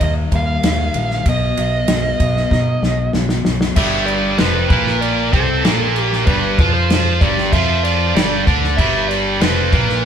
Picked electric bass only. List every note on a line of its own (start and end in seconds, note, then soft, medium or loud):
0.01 0.25 D#2 medium
0.32 0.56 D#2 medium
0.63 0.88 D#2 medium
0.94 1.19 A#1 medium
1.26 1.50 B1 medium
1.58 1.82 B1 medium
1.88 2.13 B1 medium
2.20 2.44 B1 medium
2.51 2.76 B2 medium
2.82 3.07 B1 loud
3.14 3.38 B1 medium
3.45 3.70 B1 medium
3.77 4.35 G1 loud
4.39 4.68 F1 loud
4.70 5.29 A#1 medium
5.33 5.62 C2 loud
5.65 6.23 A#1 medium
6.27 6.56 G1 loud
6.59 7.17 F2 loud
7.21 7.51 G1 loud
7.53 8.12 F2 loud
8.15 8.44 G1 loud
8.47 8.76 D2 medium
8.79 9.37 G1 loud
9.41 9.70 F1 medium
9.73 10.05 A#1 loud